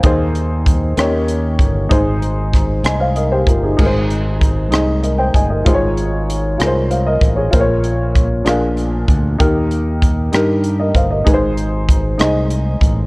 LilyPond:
<<
  \new Staff \with { instrumentName = "Upright piano" } { \time 6/8 \key aes \major \tempo 4. = 64 << { f''16 r2 r8. | r4. <ees'' aes''>16 <c'' f''>16 <bes' ees''>16 <g' c''>16 <f' bes'>16 <ees' aes'>16~ | <ees' aes'>16 r4. r16 <bes' ees''>16 <c'' g''>16 <ees'' aes''>16 <bes' ees''>16~ | <bes' ees''>16 r4. r16 <c'' f''>16 <bes' ees''>8 <aes' des''>16~ |
<aes' des''>16 r2 r8. | r2 r16 <bes' ees''>16 <c'' f''>16 <bes' ees''>16~ | <bes' ees''>16 r2 r8. | } \\ { <ees' aes' c''>4 r8 <bes des' ees' g' des''>4 r8 | <ees' aes' c''>4 r2 | <ees' aes' bes' c''>4 r8 <ees' aes' ees''>4 r8 | <f' aes' c'' des''>4 r8 <f' aes' bes' c''>4 r8 |
<f' bes' c'' des''>4 r8 <d' f' aes' bes' f''>4 r8 | <ees' g' bes'>4 r8 <ees' g' bes'>4 r8 | <ees' aes' ces'' c''>4 r8 <ees' aes' ees''>4 r8 | } >> }
  \new Staff \with { instrumentName = "Upright piano" } { \clef bass \time 6/8 \key aes \major ees4. ees4. | aes,4. r4. | aes,4. r4. | aes,4. r4. |
bes,4. bes,4. | ees4. r4. | aes,4. r4. | }
  \new Staff \with { instrumentName = "Fingered electric bass" } { \clef bass \time 6/8 \key aes \major ees,4. ees,4 g,,8 | aes,,4. c,4 g,,8 | aes,,4. c,4 g,,8 | aes,,4. c,4 a,,8 |
bes,,4. bes,,4 d,8 | ees,4. g,4 g,,8 | aes,,4. c,4 a,,8 | }
  \new DrumStaff \with { instrumentName = "Drums" } \drummode { \time 6/8 <hh bd>8 hh8 <hh bd>8 <hh ss>8 hh8 <hh bd>8 | <hh bd>8 hh8 <hh bd ss>8 <hh ss>8 hh8 <hh bd>8 | <cymc bd>8 hh8 <hh bd>8 <hh ss>8 hh8 <hh bd>8 | <hh bd>8 hh8 hh8 <hh ss>8 hh8 <hh bd>8 |
<hh bd>8 hh8 <hh bd>8 <hh ss>8 hh8 <hh bd>8 | <hh bd>8 hh8 <hh bd>8 <hh ss>8 hh8 <hh bd>8 | <hh bd>8 hh8 <hh bd>8 <hh ss>8 hh8 <hh bd>8 | }
>>